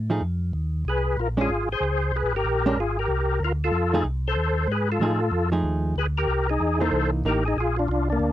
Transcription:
0.00 0.20 A2 medium
0.10 0.21 F3 medium
0.10 0.21 A3 medium
0.10 0.21 D#4 medium
0.10 0.21 G#4 medium
0.21 0.52 F2 medium
0.53 0.84 D#2 medium
0.85 1.16 C2 medium
0.85 1.17 G#4 medium
0.89 1.20 B4 medium
1.17 1.48 A#1 medium
1.17 1.28 F4 medium
1.17 1.29 A#4 medium
1.37 1.48 G#3 medium
1.37 1.48 C#4 medium
1.37 1.49 D4 medium
1.37 1.69 F4 medium
1.41 1.69 G#4 loud
1.49 1.67 G#1 medium
1.69 1.75 G#1 soft
1.69 2.12 G#4 medium
1.69 2.16 C5 loud
1.80 2.12 C#2 medium
2.12 2.23 C2 medium
2.12 2.33 G#4 medium
2.17 2.35 B4 medium
2.23 2.34 A#1 medium
2.34 2.44 G#1 medium
2.34 2.76 G4 medium
2.34 2.80 A#4 loud
2.44 2.76 A#1 medium
2.66 2.76 G#3 medium
2.66 2.77 C#4 medium
2.66 2.77 D4 medium
2.77 3.08 G#1 medium
2.77 2.97 F4 medium
2.77 2.99 G#4 medium
2.99 3.39 G4 medium
2.99 3.43 A#4 medium
3.08 3.40 C2 medium
3.40 3.72 D2 medium
3.44 3.52 F4 medium
3.44 3.52 A#4 medium
3.64 4.04 F4 medium
3.64 4.04 A4 loud
3.72 4.03 F2 medium
3.93 4.04 F3 medium
3.93 4.04 A3 medium
3.93 4.04 D#4 medium
3.93 4.05 G#4 medium
4.04 4.36 C2 medium
4.28 4.67 A4 medium
4.28 4.72 C5 medium
4.36 4.67 D#2 medium
4.67 4.99 G#2 medium
4.72 4.89 G#4 medium
4.72 4.90 B4 medium
4.92 5.50 F4 medium
4.92 5.50 A4 medium
5.00 5.31 A2 medium
5.00 5.19 F3 medium
5.00 5.19 A3 medium
5.00 5.19 D#4 medium
5.00 5.19 G#4 medium
5.31 5.63 F2 medium
5.52 5.94 F3 medium
5.52 5.94 A3 medium
5.52 5.94 D#4 medium
5.52 5.94 G#4 medium
5.63 5.95 D#2 medium
5.96 6.27 D2 medium
5.96 6.07 G#4 medium
5.96 6.06 B4 medium
6.17 6.47 G4 medium
6.17 6.50 A#4 loud
6.27 6.59 C2 medium
6.50 6.79 D#4 medium
6.50 6.82 G#4 medium
6.60 6.91 E2 medium
6.80 7.22 E3 medium
6.80 7.22 A#3 medium
6.80 7.23 D#4 medium
6.80 7.11 A4 medium
6.80 7.10 C5 loud
6.91 7.23 C2 medium
7.24 7.55 A1 medium
7.24 7.42 E3 medium
7.24 7.43 A#3 medium
7.24 7.43 D#4 medium
7.24 7.44 A#4 medium
7.28 7.45 G4 medium
7.45 7.57 D#4 medium
7.45 7.57 G#4 medium
7.56 7.87 A#1 medium
7.56 7.77 G#4 medium
7.60 7.75 F4 medium
7.77 7.89 D4 medium
7.77 7.87 F4 loud
7.88 8.19 C2 medium
7.88 8.08 D4 medium
7.88 8.09 F4 medium
8.10 8.32 A#3 medium
8.10 8.32 D4 loud
8.19 8.32 D2 medium

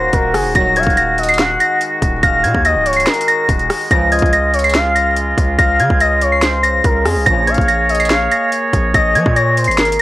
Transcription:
0.00 3.87 D#3 medium
0.00 0.52 A#3 medium
0.00 3.87 F#4 medium
0.00 0.11 C5 medium
0.00 0.51 A#6 medium
0.13 0.36 D#1 loud
0.13 0.33 A#4 medium
0.13 kick loud
0.13 closed hi-hat medium
0.34 0.46 F#1 loud
0.34 0.54 G#4 medium
0.34 cross-stick medium
0.34 open hi-hat medium
0.45 0.55 D#1 loud
0.55 0.85 D#1 loud
0.55 0.95 A#2 loud
0.55 0.95 D#3 medium
0.55 0.95 F#3 loud
0.55 7.23 G#3 medium
0.55 0.72 A#6 loud
0.55 kick loud
0.55 closed hi-hat loud
0.76 1.16 F5 medium
0.76 0.93 G#6 medium
0.76 closed hi-hat medium
0.83 1.57 D#1 loud
0.83 kick loud
0.83 closed hi-hat medium
0.90 closed hi-hat soft
0.97 1.27 A#6 medium
0.97 closed hi-hat medium
1.18 1.38 D#5 medium
1.18 closed hi-hat medium
1.23 closed hi-hat medium
1.29 1.58 C7 medium
1.29 closed hi-hat medium
1.34 closed hi-hat medium
1.39 1.79 F#5 medium
1.39 snare loud
1.39 closed hi-hat medium
1.60 2.19 A#6 medium
1.60 closed hi-hat medium
1.81 closed hi-hat medium
2.02 2.22 D#1 loud
2.02 kick loud
2.02 closed hi-hat medium
2.23 2.45 D#1 loud
2.23 2.62 F5 medium
2.23 2.39 A#6 loud
2.23 kick loud
2.23 closed hi-hat medium
2.44 2.54 A#2 loud
2.44 2.60 G#6 medium
2.44 closed hi-hat medium
2.55 2.77 D#2 loud
2.55 kick loud
2.65 2.85 D#5 medium
2.65 2.95 A#6 medium
2.65 closed hi-hat medium
2.75 3.05 C#1 loud
2.86 3.06 C#5 medium
2.86 closed hi-hat medium
2.93 3.26 C7 medium
2.93 closed hi-hat medium
3.00 closed hi-hat medium
3.07 3.46 A#4 loud
3.07 snare loud
3.07 closed hi-hat medium
3.14 closed hi-hat medium
3.21 closed hi-hat medium
3.28 3.87 A#6 medium
3.28 closed hi-hat medium
3.49 3.69 D#1 loud
3.49 kick loud
3.49 closed hi-hat medium
3.59 closed hi-hat soft
3.70 cross-stick loud
3.70 open hi-hat medium
3.91 4.21 C#2 loud
3.91 4.31 G#2 loud
3.91 4.31 C#3 loud
3.91 7.23 C#3 medium
3.91 4.31 F3 loud
3.91 7.23 F4 medium
3.91 4.07 A#6 loud
3.91 kick loud
3.91 closed hi-hat medium
4.12 4.51 D#5 medium
4.12 4.28 G#6 medium
4.12 closed hi-hat medium
4.19 5.34 C#2 loud
4.19 kick loud
4.19 closed hi-hat medium
4.26 closed hi-hat soft
4.33 4.62 A#6 medium
4.33 closed hi-hat medium
4.54 4.74 C#5 medium
4.54 closed hi-hat medium
4.59 closed hi-hat medium
4.64 4.94 C7 medium
4.64 closed hi-hat medium
4.70 closed hi-hat medium
4.75 5.14 F5 medium
4.75 snare loud
4.75 closed hi-hat medium
4.95 5.55 A#6 medium
4.95 closed hi-hat medium
5.16 closed hi-hat medium
5.38 5.58 C#2 loud
5.38 kick loud
5.38 closed hi-hat medium
5.58 5.81 C#2 loud
5.58 5.98 F5 loud
5.58 5.75 A#6 loud
5.58 kick loud
5.58 closed hi-hat loud
5.80 5.90 C#3 loud
5.80 5.96 G#6 medium
5.80 closed hi-hat medium
5.90 6.81 C#2 loud
5.90 kick loud
6.00 6.21 D#5 medium
6.00 6.30 A#6 medium
6.00 closed hi-hat medium
6.21 6.42 C#5 medium
6.21 closed hi-hat medium
6.32 6.62 C7 medium
6.42 6.82 C5 medium
6.42 snare loud
6.42 closed hi-hat medium
6.63 7.22 A#6 medium
6.63 closed hi-hat medium
6.84 7.07 C#2 loud
6.84 7.04 A#4 medium
6.84 kick loud
6.84 closed hi-hat medium
7.05 7.18 F2 loud
7.05 7.25 G#4 medium
7.05 cross-stick loud
7.05 open hi-hat medium
7.16 7.26 C#2 loud
7.26 7.57 A#1 loud
7.26 7.66 A#2 loud
7.26 7.66 C#3 loud
7.26 7.66 F3 loud
7.26 10.02 A#3 medium
7.26 10.02 G#4 medium
7.26 10.02 C#5 medium
7.26 7.42 A#6 loud
7.26 kick loud
7.26 closed hi-hat medium
7.47 7.87 F5 medium
7.47 7.64 G#6 medium
7.47 closed hi-hat medium
7.54 8.28 A#1 loud
7.54 kick loud
7.54 closed hi-hat medium
7.61 closed hi-hat soft
7.68 7.98 A#6 medium
7.68 closed hi-hat medium
7.89 8.09 D#5 medium
7.89 closed hi-hat medium
7.95 closed hi-hat medium
8.00 8.29 C7 medium
8.00 closed hi-hat medium
8.05 closed hi-hat medium
8.10 8.50 F5 medium
8.10 snare loud
8.10 closed hi-hat medium
8.32 8.91 A#6 medium
8.32 closed hi-hat medium
8.52 closed hi-hat medium
8.73 8.93 A#1 loud
8.73 kick loud
8.73 closed hi-hat medium
8.94 9.17 A#1 loud
8.94 9.34 D#5 loud
8.94 9.11 A#6 loud
8.94 kick loud
8.94 closed hi-hat loud
9.15 9.25 F3 loud
9.15 9.32 G#6 medium
9.15 closed hi-hat medium
9.26 9.69 A#2 loud
9.26 kick loud
9.36 9.56 C#5 medium
9.36 9.66 A#6 medium
9.36 closed hi-hat medium
9.57 9.77 C5 medium
9.57 closed hi-hat medium
9.64 9.98 G#1 loud
9.64 9.97 C7 medium
9.64 closed hi-hat medium
9.71 closed hi-hat medium
9.78 10.02 A#4 loud
9.78 snare loud
9.78 closed hi-hat medium
9.85 closed hi-hat medium
9.92 closed hi-hat medium

